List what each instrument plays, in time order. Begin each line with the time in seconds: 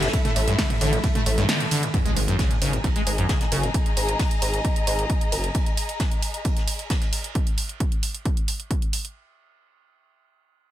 Already playing: ambient pad G#2 D#3, string section A4 E5 B5
0.02 acid bass A2, snare, closed hi-hat, ride
0.07 snare, ride
0.13 acid bass A2, kick, closed hi-hat, ride
0.24 acid bass A3, closed hi-hat, mid tom, ride
0.36 analog synth bass A1, acid bass A3, open hi-hat, ride
0.48 acid bass G2, closed hi-hat
0.58 acid bass D3, kick, snare, closed hi-hat, open hi-hat, ride
0.70 acid bass A2, closed hi-hat, mid tom, ride
0.81 analog synth bass A1, acid bass D3, open hi-hat, ride
0.93 acid bass A2, closed hi-hat
1.04 acid bass A2, kick, closed hi-hat, ride
1.15 acid bass A3, closed hi-hat, mid tom
1.26 analog synth bass A1, acid bass A3, open hi-hat, ride
1.38 acid bass G2, snare, closed hi-hat, ride
1.49 acid bass D3, snare, closed hi-hat, ride
1.60 acid bass A2, closed hi-hat, ride
1.71 acid bass D3, open hi-hat, ride
1.82 acid bass A2, closed hi-hat, ride
1.94 acid bass G#2, string section G#4, kick, closed hi-hat, ride, impact
2.05 acid bass G#3, closed hi-hat
2.16 analog synth bass G#1, acid bass G#3, open hi-hat, ride
2.28 acid bass F#2, closed hi-hat, ride
2.39 acid bass C#3, kick, snare, closed hi-hat, ride
2.50 acid bass G#2, string section D#5, closed hi-hat, ride
2.56 string section A#5
2.61 analog synth bass G#1, acid bass C#3, open hi-hat, ride
2.73 acid bass G#2, closed hi-hat
2.84 acid bass G#2, kick, closed hi-hat, ride
2.96 acid bass G#3, snare, closed hi-hat
3.07 analog synth bass G#1, acid bass G#3, open hi-hat, ride
3.18 acid bass F#2, closed hi-hat
3.29 acid bass C#3, kick, snare, closed hi-hat, ride
3.41 acid bass G#2, snare, closed hi-hat
3.52 analog synth bass F#1, acid bass C#3, open hi-hat, ride
3.63 acid bass G#2, closed hi-hat
3.74 kick, closed hi-hat, ride
3.86 closed hi-hat, ride
3.97 analog synth bass G#1, open hi-hat, ride
4.09 closed hi-hat
4.19 kick, snare, closed hi-hat, open hi-hat
4.31 closed hi-hat, ride
4.42 analog synth bass G#1, open hi-hat, ride
4.54 closed hi-hat
4.64 kick, closed hi-hat, ride
4.76 closed hi-hat
4.87 analog synth bass G#1, open hi-hat, ride
4.99 closed hi-hat
5.10 kick, closed hi-hat, ride
5.21 closed hi-hat, ride
5.32 analog synth bass F#1, open hi-hat, ride
5.44 closed hi-hat, ride
5.54 kick, closed hi-hat, ride
5.66 closed hi-hat
5.77 open hi-hat, ride
5.89 closed hi-hat, ride
6.00 kick, snare, closed hi-hat, ride
6.12 closed hi-hat, ride
6.22 open hi-hat, ride
6.34 closed hi-hat
6.45 kick, closed hi-hat, ride
6.57 snare, closed hi-hat
6.68 open hi-hat, ride
6.79 closed hi-hat
6.90 kick, snare, closed hi-hat, ride
7.01 snare, closed hi-hat
7.12 open hi-hat, ride
7.24 closed hi-hat
7.35 kick, closed hi-hat
7.47 closed hi-hat
7.58 open hi-hat
7.69 closed hi-hat
7.80 kick, closed hi-hat
7.92 closed hi-hat
8.03 open hi-hat
8.14 closed hi-hat
8.25 kick, closed hi-hat
8.37 closed hi-hat
8.48 open hi-hat
8.60 closed hi-hat
8.71 kick, closed hi-hat
8.82 closed hi-hat
8.93 open hi-hat
9.05 closed hi-hat